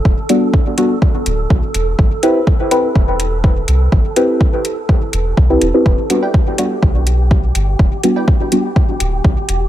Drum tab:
HH |-x-x-x-x|-x-x-x-x|-x-x-x-x|-x-x-x-x|
BD |o-o-o-o-|o-o-o-o-|o-o-o-o-|o-o-o-o-|

HH |-x-x-x-x|
BD |o-o-o-o-|